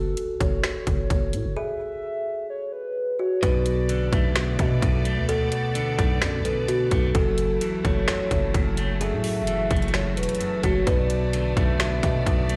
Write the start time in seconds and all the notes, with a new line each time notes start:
Already playing: F#1 A4
0.17 closed hi-hat
0.40 F#1 C#5, kick, closed hi-hat
0.64 finger snap, snare, closed hi-hat
0.87 F#1, kick, closed hi-hat
1.10 F#1, kick, closed hi-hat
1.33 A2, closed hi-hat
1.45 F#1
1.57 G#4 E5
2.50 C#5
2.73 B4
3.19 F#4 C#5
3.42 B1 B2 B3 A4 B4 D5, kick, closed hi-hat
3.66 closed hi-hat
3.89 D3, closed hi-hat
4.13 B1 A3 E5, kick, closed hi-hat
4.36 B2, finger snap, snare, closed hi-hat
4.59 B2, kick, closed hi-hat
4.82 B1 B2, kick, closed hi-hat
5.05 A3, closed hi-hat
5.17 D2
5.29 B2 A4 F#5, closed hi-hat
5.52 closed hi-hat
5.75 D3, closed hi-hat
5.98 B1 A3, kick, closed hi-hat
6.22 F#2 B2 D5, finger snap, snare, closed hi-hat
6.39 B1
6.44 B2 A4 B4, closed hi-hat
6.68 B2 F#4, closed hi-hat
6.91 B1 A3, kick, closed hi-hat
7.14 F#1 F#2 F#3 A3 E4 A4, kick, closed hi-hat
7.38 closed hi-hat
7.61 E3, closed hi-hat
7.84 F#1 A3 C#5, kick, closed hi-hat
8.07 F#2, finger snap, snare, closed hi-hat
8.31 F#1 F#2, kick, closed hi-hat
8.54 F#1 F#2, kick, closed hi-hat
8.77 A3, closed hi-hat
9.01 F#2 F#4 G#4 E5, closed hi-hat
9.12 A2
9.24 open hi-hat
9.42 F#1
9.47 E3, closed hi-hat
9.70 F#1 A3, kick, closed hi-hat
9.76 closed hi-hat
9.82 closed hi-hat
9.88 closed hi-hat
9.93 F#2 C#5, finger snap, snare, closed hi-hat
10.17 E1 F#2 B4, closed hi-hat
10.23 closed hi-hat
10.29 closed hi-hat
10.35 closed hi-hat
10.40 F#2, closed hi-hat
10.63 F#1 A3 F#4 C#5, kick, closed hi-hat
10.87 B1 B2 B3 B4 D5, kick, closed hi-hat
11.10 closed hi-hat
11.33 D3, closed hi-hat
11.57 B1 A3 E5, kick, closed hi-hat
11.80 B2, finger snap, snare, closed hi-hat
12.03 B2, kick, closed hi-hat
12.26 B1 B2, kick, closed hi-hat
12.49 A3, closed hi-hat